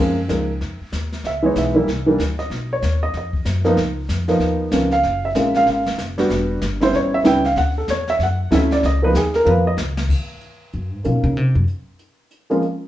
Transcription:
Already playing: upright bass F#2, grand piano F3 G#3 A#3 C#4
0.28 upright bass C#2, grand piano F3 G#3 A#3 D#4, snare, hi-hat pedal
0.61 upright bass F2, brush sweep, snare
0.81 muted upright bass stroke
0.92 upright bass D#2, snare, hi-hat pedal
1.12 snare
1.24 upright bass C#2, grand piano E5, brush sweep, snare
1.42 grand piano E3 G#3 B3 D#4 C#5
1.56 upright bass B1, grand piano E5, snare, hi-hat pedal
1.74 grand piano E3 G3 A#3 E4
1.87 upright bass C2, brush sweep, snare
2.06 grand piano E3 G3 A#3 D4
2.19 upright bass D2, snare, hi-hat pedal
2.39 grand piano D#5, snare
2.50 upright bass B1, brush sweep, snare
2.73 grand piano C#5
2.82 upright bass D#2, snare, hi-hat pedal
3.03 grand piano D#5
3.14 upright bass F2, grand piano D#5, brush sweep, snare
3.33 kick
3.45 upright bass F#2, snare, hi-hat pedal
3.65 grand piano F3 A#3 B3 D#4, snare
3.77 upright bass C#2, brush sweep, snare
4.09 upright bass F2, snare, hi-hat pedal
4.28 grand piano F3 A#3 B3 D#4, snare
4.40 upright bass D#2, brush sweep, snare
4.71 upright bass C#2, grand piano F3 A#3 B3 C#4, snare, hi-hat pedal
4.91 grand piano F5, snare
5.03 upright bass F#1, brush sweep, snare
5.25 grand piano E5
5.35 upright bass A#1, grand piano G#3 A#3 C#4 F4, snare, hi-hat pedal
5.54 grand piano F5, snare
5.66 upright bass G#1, brush sweep, snare
5.86 snare
5.98 upright bass F#1, snare, hi-hat pedal
6.18 grand piano G3 B3 D4 F#4, snare
6.30 upright bass E1, brush sweep, snare
6.62 upright bass G1, snare, hi-hat pedal
6.80 grand piano G3 B3 C#4 E4 C5, snare
6.93 upright bass A1, grand piano C#5, brush sweep, snare
7.14 grand piano E5
7.24 upright bass C#2, grand piano G3 B3 C#4 E4 G5, snare, hi-hat pedal
7.45 grand piano F5, snare
7.56 upright bass D2, grand piano F#5, brush sweep, snare
7.78 grand piano A4
7.88 upright bass E2, grand piano C#5, snare, hi-hat pedal
8.07 grand piano E5, snare
8.19 upright bass F#2, brush sweep, snare
8.23 grand piano F#5
8.51 upright bass D2, grand piano F#3 A3 C#4 E4 E5, snare, hi-hat pedal
8.71 grand piano D5, snare
8.83 upright bass C#2, grand piano D#5, brush sweep, snare
9.02 grand piano F3 A#3 B3 D#4 B4
9.13 upright bass D#2, grand piano G4, snare, hi-hat pedal
9.17 grand piano G#4
9.34 grand piano A#4, snare
9.45 upright bass F2, grand piano F3 A#3 B3 F4 B4, mid tom
9.67 grand piano D#5
9.77 upright bass C#2, snare, hi-hat pedal
9.97 snare
10.09 kick, crash
10.41 closed hi-hat
10.73 upright bass F#2, closed hi-hat
10.93 upright bass G#2
11.04 upright bass B2, grand piano F#3 A#3 C#4 D#4 F4, closed hi-hat
11.24 upright bass C#3, closed hi-hat
11.36 upright bass C3, closed hi-hat
11.55 upright bass F#2
11.67 closed hi-hat
11.99 closed hi-hat
12.31 closed hi-hat
12.50 grand piano F3 G#3 A#3 C#4 F4, closed hi-hat
12.62 closed hi-hat

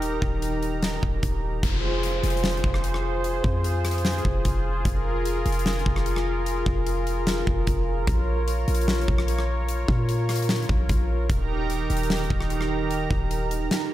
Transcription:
Already playing: 808-style bass D#1, analog synth pad D#3 D#4 G4 A#4 A#5
0.02 closed hi-hat
0.22 808-style bass D#1, kick
0.42 closed hi-hat
0.63 closed hi-hat
0.83 snare, closed hi-hat
1.03 808-style bass D#1, kick
1.23 808-style bass D#1, kick, closed hi-hat
1.63 808-style bass F1, analog synth pad F4 G#4 C5, kick, closed hi-hat, downlifter
2.03 closed hi-hat
2.23 808-style bass F1, closed hi-hat
2.30 closed hi-hat
2.37 closed hi-hat
2.44 snare, closed hi-hat
2.50 closed hi-hat
2.57 closed hi-hat
2.64 808-style bass F1, kick
2.74 cross-stick
2.84 closed hi-hat
2.94 cross-stick
3.24 closed hi-hat
3.44 808-style bass F2, kick
3.64 closed hi-hat
3.85 cross-stick, closed hi-hat
3.91 closed hi-hat
3.98 closed hi-hat
4.05 snare, closed hi-hat
4.11 closed hi-hat
4.18 closed hi-hat
4.25 808-style bass F1, kick
4.45 808-style bass F1, kick, closed hi-hat
4.85 808-style bass F1, analog synth pad A#4, kick, closed hi-hat
5.25 closed hi-hat
5.46 808-style bass F1, closed hi-hat
5.52 closed hi-hat
5.59 closed hi-hat
5.66 snare, closed hi-hat
5.73 closed hi-hat
5.79 closed hi-hat
5.86 808-style bass F1, kick
5.96 cross-stick
6.06 closed hi-hat
6.16 cross-stick
6.46 closed hi-hat
6.66 808-style bass F1, kick
6.87 closed hi-hat
7.07 closed hi-hat
7.27 snare, closed hi-hat
7.47 808-style bass F1, kick
7.67 808-style bass F1, kick, closed hi-hat
8.07 808-style bass A#1, analog synth pad C#5, kick, closed hi-hat
8.48 closed hi-hat
8.68 808-style bass A#1, closed hi-hat
8.75 closed hi-hat
8.81 closed hi-hat
8.88 snare, closed hi-hat
8.95 closed hi-hat
9.01 closed hi-hat
9.08 808-style bass A#1, kick
9.18 cross-stick
9.28 closed hi-hat
9.39 cross-stick
9.69 closed hi-hat
9.88 808-style bass A#2, kick
10.09 closed hi-hat
10.29 cross-stick, closed hi-hat, open hi-hat
10.36 closed hi-hat
10.42 closed hi-hat
10.49 snare, closed hi-hat
10.56 closed hi-hat
10.62 closed hi-hat
10.69 808-style bass A#1, kick
10.89 808-style bass A#1, kick, closed hi-hat
11.30 808-style bass D#1, analog synth pad D#3 D#4 G4 A#4 A#5, kick, closed hi-hat
11.70 closed hi-hat
11.90 808-style bass D#1, closed hi-hat
11.97 closed hi-hat
12.03 closed hi-hat
12.10 snare, closed hi-hat
12.17 closed hi-hat
12.24 closed hi-hat
12.30 808-style bass D#1, kick
12.41 cross-stick
12.50 closed hi-hat
12.61 cross-stick
12.91 closed hi-hat
13.11 808-style bass D#1, kick
13.31 closed hi-hat
13.51 closed hi-hat
13.71 snare, closed hi-hat

